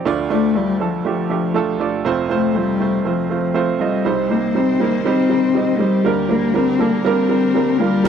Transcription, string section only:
0, 0, Header, 1, 2, 480
1, 0, Start_track
1, 0, Tempo, 499958
1, 53, Time_signature, 4, 2, 24, 8
1, 7762, End_track
2, 0, Start_track
2, 0, Title_t, "String section"
2, 0, Program_c, 0, 48
2, 3899, Note_on_c, 0, 51, 67
2, 3901, Note_on_c, 0, 67, 64
2, 3903, Note_on_c, 0, 60, 60
2, 3903, Note_on_c, 0, 72, 74
2, 5797, Note_off_c, 0, 51, 0
2, 5799, Note_off_c, 0, 60, 0
2, 5799, Note_off_c, 0, 72, 0
2, 5813, Note_on_c, 0, 50, 71
2, 5814, Note_on_c, 0, 55, 70
2, 5815, Note_on_c, 0, 58, 65
2, 5816, Note_on_c, 0, 70, 78
2, 7714, Note_off_c, 0, 50, 0
2, 7762, Note_off_c, 0, 55, 0
2, 7762, Note_off_c, 0, 58, 0
2, 7762, Note_off_c, 0, 67, 0
2, 7762, Note_off_c, 0, 70, 0
2, 7762, End_track
0, 0, End_of_file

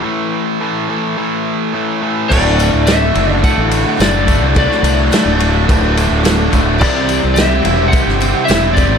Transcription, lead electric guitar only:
0, 0, Header, 1, 2, 480
1, 0, Start_track
1, 0, Tempo, 562324
1, 44, Time_signature, 4, 2, 24, 8
1, 7667, End_track
2, 0, Start_track
2, 0, Title_t, "Lead electric guitar"
2, 0, Program_c, 0, 29
2, 1957, Note_on_c, 0, 74, 90
2, 2447, Note_on_c, 0, 76, 103
2, 2459, Note_off_c, 0, 74, 0
2, 2840, Note_off_c, 0, 76, 0
2, 2840, Note_on_c, 0, 74, 103
2, 2934, Note_off_c, 0, 74, 0
2, 2938, Note_on_c, 0, 78, 95
2, 3428, Note_on_c, 0, 74, 94
2, 3429, Note_off_c, 0, 78, 0
2, 3866, Note_off_c, 0, 74, 0
2, 3912, Note_on_c, 0, 74, 87
2, 5305, Note_off_c, 0, 74, 0
2, 5812, Note_on_c, 0, 74, 85
2, 6266, Note_on_c, 0, 76, 97
2, 6303, Note_off_c, 0, 74, 0
2, 6724, Note_off_c, 0, 76, 0
2, 6728, Note_on_c, 0, 78, 95
2, 7211, Note_off_c, 0, 78, 0
2, 7214, Note_on_c, 0, 76, 98
2, 7456, Note_on_c, 0, 74, 88
2, 7477, Note_off_c, 0, 76, 0
2, 7667, Note_off_c, 0, 74, 0
2, 7667, End_track
0, 0, End_of_file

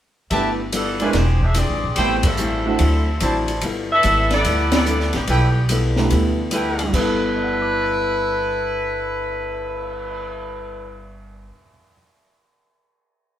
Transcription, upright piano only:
0, 0, Header, 1, 2, 480
1, 0, Start_track
1, 0, Key_signature, 1, "major"
1, 0, Tempo, 412655
1, 364, Time_signature, 4, 2, 24, 8
1, 15575, End_track
2, 0, Start_track
2, 0, Title_t, "Upright piano"
2, 0, Program_c, 0, 0
2, 376, Note_on_c, 0, 57, 44
2, 382, Note_on_c, 0, 62, 43
2, 383, Note_on_c, 0, 59, 46
2, 389, Note_on_c, 0, 64, 42
2, 391, Note_on_c, 0, 67, 49
2, 656, Note_off_c, 0, 57, 0
2, 658, Note_off_c, 0, 62, 0
2, 659, Note_off_c, 0, 59, 0
2, 662, Note_off_c, 0, 64, 0
2, 663, Note_off_c, 0, 67, 0
2, 1174, Note_on_c, 0, 56, 67
2, 1175, Note_on_c, 0, 60, 63
2, 1180, Note_on_c, 0, 62, 69
2, 1187, Note_on_c, 0, 64, 64
2, 1192, Note_on_c, 0, 70, 78
2, 1316, Note_off_c, 0, 56, 0
2, 1317, Note_off_c, 0, 60, 0
2, 1319, Note_off_c, 0, 62, 0
2, 1322, Note_off_c, 0, 64, 0
2, 1325, Note_off_c, 0, 70, 0
2, 2297, Note_on_c, 0, 59, 48
2, 2298, Note_on_c, 0, 57, 53
2, 2306, Note_on_c, 0, 60, 50
2, 2311, Note_on_c, 0, 64, 47
2, 2314, Note_on_c, 0, 67, 58
2, 2580, Note_off_c, 0, 59, 0
2, 2581, Note_off_c, 0, 57, 0
2, 2585, Note_off_c, 0, 60, 0
2, 2587, Note_off_c, 0, 64, 0
2, 2589, Note_off_c, 0, 67, 0
2, 3088, Note_on_c, 0, 57, 72
2, 3098, Note_on_c, 0, 62, 67
2, 3100, Note_on_c, 0, 60, 58
2, 3104, Note_on_c, 0, 64, 65
2, 3107, Note_on_c, 0, 66, 75
2, 3237, Note_off_c, 0, 57, 0
2, 3242, Note_off_c, 0, 62, 0
2, 3243, Note_off_c, 0, 60, 0
2, 3246, Note_off_c, 0, 64, 0
2, 3247, Note_off_c, 0, 66, 0
2, 5507, Note_on_c, 0, 57, 54
2, 5515, Note_on_c, 0, 59, 49
2, 5517, Note_on_c, 0, 62, 52
2, 5521, Note_on_c, 0, 64, 49
2, 5523, Note_on_c, 0, 67, 61
2, 5653, Note_off_c, 0, 57, 0
2, 5657, Note_off_c, 0, 59, 0
2, 5658, Note_off_c, 0, 62, 0
2, 5660, Note_off_c, 0, 64, 0
2, 5661, Note_off_c, 0, 67, 0
2, 6959, Note_on_c, 0, 57, 72
2, 6959, Note_on_c, 0, 59, 65
2, 6966, Note_on_c, 0, 62, 60
2, 6970, Note_on_c, 0, 64, 61
2, 6976, Note_on_c, 0, 67, 73
2, 7565, Note_off_c, 0, 57, 0
2, 7565, Note_off_c, 0, 59, 0
2, 7569, Note_off_c, 0, 62, 0
2, 7571, Note_off_c, 0, 64, 0
2, 7574, Note_off_c, 0, 67, 0
2, 7935, Note_on_c, 0, 43, 55
2, 8008, Note_on_c, 0, 55, 52
2, 8079, Note_on_c, 0, 59, 54
2, 8155, Note_on_c, 0, 64, 55
2, 8223, Note_on_c, 0, 69, 61
2, 8566, Note_on_c, 0, 74, 40
2, 8651, Note_on_c, 0, 78, 36
2, 8752, Note_on_c, 0, 81, 33
2, 8858, Note_on_c, 0, 86, 34
2, 8975, Note_on_c, 0, 90, 33
2, 9234, Note_on_c, 0, 98, 29
2, 13296, Note_off_c, 0, 43, 0
2, 13369, Note_off_c, 0, 55, 0
2, 13440, Note_off_c, 0, 59, 0
2, 13516, Note_off_c, 0, 64, 0
2, 13584, Note_off_c, 0, 69, 0
2, 13607, Note_off_c, 0, 74, 0
2, 13650, Note_off_c, 0, 78, 0
2, 13700, Note_off_c, 0, 81, 0
2, 13753, Note_off_c, 0, 86, 0
2, 13812, Note_off_c, 0, 90, 0
2, 13941, Note_off_c, 0, 98, 0
2, 15575, End_track
0, 0, End_of_file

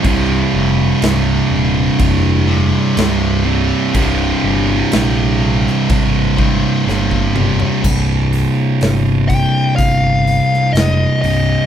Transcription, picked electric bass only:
0, 0, Header, 1, 2, 480
1, 0, Start_track
1, 0, Tempo, 972447
1, 23, Time_signature, 4, 2, 24, 8
1, 5756, End_track
2, 0, Start_track
2, 0, Title_t, "Picked electric bass"
2, 0, Program_c, 0, 34
2, 23, Note_on_c, 0, 24, 96
2, 202, Note_off_c, 0, 24, 0
2, 263, Note_on_c, 0, 29, 95
2, 442, Note_off_c, 0, 29, 0
2, 504, Note_on_c, 0, 24, 85
2, 683, Note_off_c, 0, 24, 0
2, 744, Note_on_c, 0, 27, 90
2, 923, Note_off_c, 0, 27, 0
2, 987, Note_on_c, 0, 29, 96
2, 1344, Note_off_c, 0, 29, 0
2, 1466, Note_on_c, 0, 24, 94
2, 1824, Note_off_c, 0, 24, 0
2, 1947, Note_on_c, 0, 24, 101
2, 2126, Note_off_c, 0, 24, 0
2, 2189, Note_on_c, 0, 31, 89
2, 2367, Note_off_c, 0, 31, 0
2, 2431, Note_on_c, 0, 34, 81
2, 2787, Note_off_c, 0, 34, 0
2, 2910, Note_on_c, 0, 32, 100
2, 3266, Note_off_c, 0, 32, 0
2, 3389, Note_on_c, 0, 31, 91
2, 3745, Note_off_c, 0, 31, 0
2, 3872, Note_on_c, 0, 24, 96
2, 4163, Note_off_c, 0, 24, 0
2, 4354, Note_on_c, 0, 31, 72
2, 4643, Note_off_c, 0, 31, 0
2, 4830, Note_on_c, 0, 31, 90
2, 5120, Note_off_c, 0, 31, 0
2, 5302, Note_on_c, 0, 29, 93
2, 5449, Note_off_c, 0, 29, 0
2, 5545, Note_on_c, 0, 24, 81
2, 5691, Note_off_c, 0, 24, 0
2, 5756, End_track
0, 0, End_of_file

